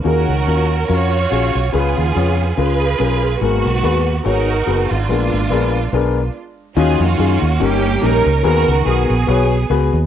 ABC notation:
X:1
M:4/4
L:1/8
Q:"Swing" 1/4=143
K:Ebm
V:1 name="Upright piano"
[DFGA] z [DFGB] z [DFGB] z [DFGA] z | [DFAc] z [DFAd] z [DFAc] z [DFAB] z | [CGAB] z [CGAc] z [CGAd] z [CGAc] z | [C=DAB] z [CDAB] z [CDAB] z3 |
[DEFG] z [DEFA] z [DE=GB] z [DEGB] z | [CGAB] z [CGAB] z [CGAd] z [CGAc] z |]
V:2 name="Upright piano" clef=bass
E,3 z4 z | D,3 z4 z | A,,3 z4 z | B,,3 z4 z |
E,3 z =G,,3 z | E,3 z4 z |]
V:3 name="String section"
[DGB]4 [FGd]4 | [CFA]4 [FAc]4 | [B,CG]4 [EGB]3 [A,=DF]- | [A,=DF]6 z2 |
[DFA] [B,DG]3 [B,D=G]2 [DEB]2 | [GB]2 [CA]4- [CA] z |]
V:4 name="Fingered electric bass" clef=bass
E,, D,, E,,2 F,,2 B,,, C,, | D,, E,, F,,2 D,,2 C,,2 | A,,, C,, E,,2 A,,,2 G,,, A,,, | B,,, A,,, B,,,2 C,,2 z2 |
E,, F,, G,, E,, =G,,,2 B,,, D,, | E,, D,, C,, B,,, C,,2 D,, E,, |]